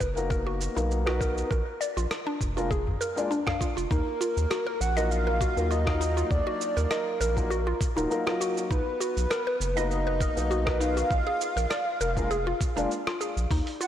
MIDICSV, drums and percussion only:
0, 0, Header, 1, 3, 480
1, 0, Start_track
1, 0, Key_signature, -6, "minor"
1, 0, Tempo, 600000
1, 1207, Time_signature, 4, 2, 24, 8
1, 11097, End_track
2, 0, Start_track
2, 0, Title_t, "Udu"
2, 1928, Note_on_c, 9, 64, 74
2, 2008, Note_off_c, 9, 64, 0
2, 2298, Note_on_c, 9, 64, 77
2, 2378, Note_off_c, 9, 64, 0
2, 2777, Note_on_c, 9, 64, 84
2, 2857, Note_off_c, 9, 64, 0
2, 11097, End_track
3, 0, Start_track
3, 0, Title_t, "Drums"
3, 4, Note_on_c, 9, 36, 57
3, 6, Note_on_c, 9, 69, 72
3, 84, Note_off_c, 9, 36, 0
3, 86, Note_off_c, 9, 69, 0
3, 137, Note_on_c, 9, 69, 42
3, 217, Note_off_c, 9, 69, 0
3, 245, Note_on_c, 9, 36, 101
3, 249, Note_on_c, 9, 69, 31
3, 325, Note_off_c, 9, 36, 0
3, 329, Note_off_c, 9, 69, 0
3, 489, Note_on_c, 9, 69, 70
3, 569, Note_off_c, 9, 69, 0
3, 619, Note_on_c, 9, 69, 42
3, 699, Note_off_c, 9, 69, 0
3, 730, Note_on_c, 9, 69, 29
3, 810, Note_off_c, 9, 69, 0
3, 857, Note_on_c, 9, 37, 69
3, 937, Note_off_c, 9, 37, 0
3, 966, Note_on_c, 9, 36, 96
3, 972, Note_on_c, 9, 69, 71
3, 1046, Note_off_c, 9, 36, 0
3, 1052, Note_off_c, 9, 69, 0
3, 1102, Note_on_c, 9, 69, 41
3, 1182, Note_off_c, 9, 69, 0
3, 1206, Note_on_c, 9, 36, 106
3, 1212, Note_on_c, 9, 69, 28
3, 1286, Note_off_c, 9, 36, 0
3, 1292, Note_off_c, 9, 69, 0
3, 1451, Note_on_c, 9, 69, 75
3, 1531, Note_off_c, 9, 69, 0
3, 1581, Note_on_c, 9, 69, 42
3, 1661, Note_off_c, 9, 69, 0
3, 1688, Note_on_c, 9, 37, 74
3, 1691, Note_on_c, 9, 69, 31
3, 1768, Note_off_c, 9, 37, 0
3, 1771, Note_off_c, 9, 69, 0
3, 1926, Note_on_c, 9, 36, 61
3, 1931, Note_on_c, 9, 69, 75
3, 2006, Note_off_c, 9, 36, 0
3, 2011, Note_off_c, 9, 69, 0
3, 2060, Note_on_c, 9, 69, 41
3, 2140, Note_off_c, 9, 69, 0
3, 2166, Note_on_c, 9, 36, 96
3, 2171, Note_on_c, 9, 69, 31
3, 2246, Note_off_c, 9, 36, 0
3, 2251, Note_off_c, 9, 69, 0
3, 2410, Note_on_c, 9, 69, 71
3, 2490, Note_off_c, 9, 69, 0
3, 2540, Note_on_c, 9, 69, 43
3, 2620, Note_off_c, 9, 69, 0
3, 2652, Note_on_c, 9, 69, 27
3, 2732, Note_off_c, 9, 69, 0
3, 2775, Note_on_c, 9, 36, 57
3, 2779, Note_on_c, 9, 37, 75
3, 2855, Note_off_c, 9, 36, 0
3, 2859, Note_off_c, 9, 37, 0
3, 2886, Note_on_c, 9, 36, 96
3, 2891, Note_on_c, 9, 69, 70
3, 2966, Note_off_c, 9, 36, 0
3, 2971, Note_off_c, 9, 69, 0
3, 3021, Note_on_c, 9, 69, 43
3, 3101, Note_off_c, 9, 69, 0
3, 3126, Note_on_c, 9, 36, 116
3, 3132, Note_on_c, 9, 69, 31
3, 3206, Note_off_c, 9, 36, 0
3, 3212, Note_off_c, 9, 69, 0
3, 3371, Note_on_c, 9, 69, 75
3, 3451, Note_off_c, 9, 69, 0
3, 3500, Note_on_c, 9, 69, 46
3, 3580, Note_off_c, 9, 69, 0
3, 3608, Note_on_c, 9, 37, 79
3, 3611, Note_on_c, 9, 69, 33
3, 3688, Note_off_c, 9, 37, 0
3, 3691, Note_off_c, 9, 69, 0
3, 3851, Note_on_c, 9, 69, 79
3, 3931, Note_off_c, 9, 69, 0
3, 3980, Note_on_c, 9, 69, 46
3, 4060, Note_off_c, 9, 69, 0
3, 4091, Note_on_c, 9, 69, 35
3, 4171, Note_off_c, 9, 69, 0
3, 4326, Note_on_c, 9, 36, 102
3, 4330, Note_on_c, 9, 69, 74
3, 4406, Note_off_c, 9, 36, 0
3, 4410, Note_off_c, 9, 69, 0
3, 4460, Note_on_c, 9, 69, 44
3, 4540, Note_off_c, 9, 69, 0
3, 4571, Note_on_c, 9, 69, 30
3, 4651, Note_off_c, 9, 69, 0
3, 4695, Note_on_c, 9, 36, 103
3, 4697, Note_on_c, 9, 37, 77
3, 4775, Note_off_c, 9, 36, 0
3, 4777, Note_off_c, 9, 37, 0
3, 4811, Note_on_c, 9, 69, 76
3, 4891, Note_off_c, 9, 69, 0
3, 4941, Note_on_c, 9, 69, 45
3, 5021, Note_off_c, 9, 69, 0
3, 5046, Note_on_c, 9, 36, 122
3, 5051, Note_on_c, 9, 69, 30
3, 5126, Note_off_c, 9, 36, 0
3, 5131, Note_off_c, 9, 69, 0
3, 5291, Note_on_c, 9, 69, 77
3, 5371, Note_off_c, 9, 69, 0
3, 5419, Note_on_c, 9, 69, 47
3, 5499, Note_off_c, 9, 69, 0
3, 5526, Note_on_c, 9, 37, 82
3, 5529, Note_on_c, 9, 69, 33
3, 5606, Note_off_c, 9, 37, 0
3, 5609, Note_off_c, 9, 69, 0
3, 5769, Note_on_c, 9, 69, 83
3, 5849, Note_off_c, 9, 69, 0
3, 5895, Note_on_c, 9, 36, 61
3, 5898, Note_on_c, 9, 69, 46
3, 5975, Note_off_c, 9, 36, 0
3, 5978, Note_off_c, 9, 69, 0
3, 6010, Note_on_c, 9, 69, 35
3, 6090, Note_off_c, 9, 69, 0
3, 6246, Note_on_c, 9, 36, 110
3, 6250, Note_on_c, 9, 69, 80
3, 6326, Note_off_c, 9, 36, 0
3, 6330, Note_off_c, 9, 69, 0
3, 6380, Note_on_c, 9, 69, 48
3, 6460, Note_off_c, 9, 69, 0
3, 6490, Note_on_c, 9, 69, 32
3, 6570, Note_off_c, 9, 69, 0
3, 6617, Note_on_c, 9, 37, 77
3, 6697, Note_off_c, 9, 37, 0
3, 6730, Note_on_c, 9, 69, 82
3, 6810, Note_off_c, 9, 69, 0
3, 6859, Note_on_c, 9, 69, 46
3, 6939, Note_off_c, 9, 69, 0
3, 6965, Note_on_c, 9, 36, 119
3, 6971, Note_on_c, 9, 69, 34
3, 7045, Note_off_c, 9, 36, 0
3, 7051, Note_off_c, 9, 69, 0
3, 7209, Note_on_c, 9, 69, 79
3, 7289, Note_off_c, 9, 69, 0
3, 7339, Note_on_c, 9, 69, 50
3, 7419, Note_off_c, 9, 69, 0
3, 7447, Note_on_c, 9, 37, 76
3, 7450, Note_on_c, 9, 69, 34
3, 7527, Note_off_c, 9, 37, 0
3, 7530, Note_off_c, 9, 69, 0
3, 7691, Note_on_c, 9, 69, 79
3, 7771, Note_off_c, 9, 69, 0
3, 7819, Note_on_c, 9, 69, 48
3, 7899, Note_off_c, 9, 69, 0
3, 7929, Note_on_c, 9, 69, 35
3, 8009, Note_off_c, 9, 69, 0
3, 8164, Note_on_c, 9, 36, 106
3, 8168, Note_on_c, 9, 69, 84
3, 8244, Note_off_c, 9, 36, 0
3, 8248, Note_off_c, 9, 69, 0
3, 8298, Note_on_c, 9, 69, 47
3, 8378, Note_off_c, 9, 69, 0
3, 8409, Note_on_c, 9, 69, 33
3, 8489, Note_off_c, 9, 69, 0
3, 8534, Note_on_c, 9, 36, 107
3, 8535, Note_on_c, 9, 37, 75
3, 8614, Note_off_c, 9, 36, 0
3, 8615, Note_off_c, 9, 37, 0
3, 8649, Note_on_c, 9, 69, 75
3, 8729, Note_off_c, 9, 69, 0
3, 8778, Note_on_c, 9, 69, 45
3, 8858, Note_off_c, 9, 69, 0
3, 8885, Note_on_c, 9, 36, 121
3, 8889, Note_on_c, 9, 69, 31
3, 8965, Note_off_c, 9, 36, 0
3, 8969, Note_off_c, 9, 69, 0
3, 9129, Note_on_c, 9, 69, 76
3, 9209, Note_off_c, 9, 69, 0
3, 9259, Note_on_c, 9, 69, 49
3, 9339, Note_off_c, 9, 69, 0
3, 9366, Note_on_c, 9, 37, 76
3, 9368, Note_on_c, 9, 69, 35
3, 9446, Note_off_c, 9, 37, 0
3, 9448, Note_off_c, 9, 69, 0
3, 9608, Note_on_c, 9, 69, 85
3, 9688, Note_off_c, 9, 69, 0
3, 9734, Note_on_c, 9, 36, 61
3, 9738, Note_on_c, 9, 69, 48
3, 9814, Note_off_c, 9, 36, 0
3, 9818, Note_off_c, 9, 69, 0
3, 9848, Note_on_c, 9, 69, 36
3, 9928, Note_off_c, 9, 69, 0
3, 10085, Note_on_c, 9, 36, 108
3, 10089, Note_on_c, 9, 69, 78
3, 10165, Note_off_c, 9, 36, 0
3, 10169, Note_off_c, 9, 69, 0
3, 10218, Note_on_c, 9, 69, 47
3, 10298, Note_off_c, 9, 69, 0
3, 10331, Note_on_c, 9, 69, 32
3, 10411, Note_off_c, 9, 69, 0
3, 10457, Note_on_c, 9, 37, 76
3, 10537, Note_off_c, 9, 37, 0
3, 10569, Note_on_c, 9, 69, 73
3, 10649, Note_off_c, 9, 69, 0
3, 10700, Note_on_c, 9, 69, 43
3, 10780, Note_off_c, 9, 69, 0
3, 10805, Note_on_c, 9, 36, 118
3, 10807, Note_on_c, 9, 46, 62
3, 10810, Note_on_c, 9, 69, 31
3, 10885, Note_off_c, 9, 36, 0
3, 10887, Note_off_c, 9, 46, 0
3, 10890, Note_off_c, 9, 69, 0
3, 10936, Note_on_c, 9, 46, 40
3, 11016, Note_off_c, 9, 46, 0
3, 11050, Note_on_c, 9, 69, 77
3, 11097, Note_off_c, 9, 69, 0
3, 11097, End_track
0, 0, End_of_file